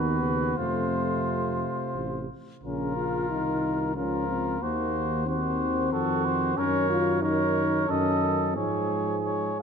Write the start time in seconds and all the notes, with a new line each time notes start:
Already playing: D#2 D#3 B3 F#4 B4
0.22 C#3
0.57 F2 C3 A3 F4 C5
1.95 A1
2.63 A#1 C#3 C#4 F4 A#4
2.96 F4
3.30 C2 D#3 D#4
3.96 C#2 F3 C#4 F4 A#4
4.28 C4
4.61 D#2 D#3 A#3 F#4 C5
5.27 D#3 C4 F#4 C5
5.92 F2 D#3 F#4 A4
6.25 C5
6.56 F#2 D#3 C#4 A#4 C#5
6.89 F4
7.23 D#3 D#4 A#4 C#5
7.88 F#2 D#3 C#4 A4 D#5
8.56 G#2 F3 G#3 G#4 C#5
9.25 C#5